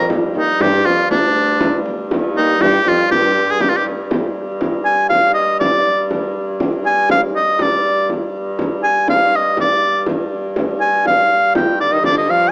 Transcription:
Already playing: G2
0.10 G2, frame drum
0.35 D#2 D#4, frame drum
0.60 G2 G4, frame drum
0.85 F2 F4, frame drum
1.10 D2 D4, frame drum
1.36 frame drum
1.60 frame drum
1.86 frame drum
2.11 frame drum
2.35 D#2 D#4, frame drum
2.61 G2 G4, frame drum
2.85 F2 F4, frame drum
3.11 G2 G4, frame drum
3.51 G#4
3.61 G4, frame drum
3.69 F4
3.77 G4
3.86 frame drum
4.10 G2, frame drum
4.61 frame drum
4.85 G#5
5.10 F5, frame drum
5.34 D#5
5.60 D5, frame drum
6.11 frame drum
6.60 frame drum
6.86 G#5
7.09 F5, frame drum
7.34 D#5, frame drum
7.59 D5, frame drum
7.84 frame drum
8.07 G2, frame drum
8.59 frame drum
8.84 G#5
9.08 F5, frame drum
9.36 D#5
9.57 D5, frame drum
10.06 frame drum
10.56 frame drum
10.81 G#5
11.06 F5, frame drum
11.55 G5, frame drum
11.80 D3 D5, frame drum
11.91 D#3 D#5
12.02 G2 D3 D5, frame drum
12.18 D#5
12.28 F3 F5

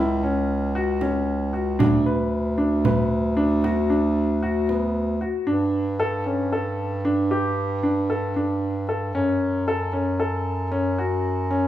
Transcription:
Already playing: C#2 E4
0.23 C#4, frame drum
0.75 F#4
1.01 C#4, frame drum
1.53 F#4
1.79 D2 D4, frame drum
2.06 B4
2.58 D4
2.85 B4, frame drum
3.37 D4
3.64 F#4, frame drum
3.90 D4
4.43 F#4, frame drum
4.69 B3, frame drum
5.21 F#4
5.47 G2 D4
6.00 A4
6.26 C#4
6.52 A4
7.05 D4
7.31 G4
7.83 D4
8.10 A4
8.36 D4
8.89 A4
9.14 F#2 C#4
9.68 A4
9.93 C#4
10.20 A4
10.72 C#4
10.98 F#4
11.51 C#4

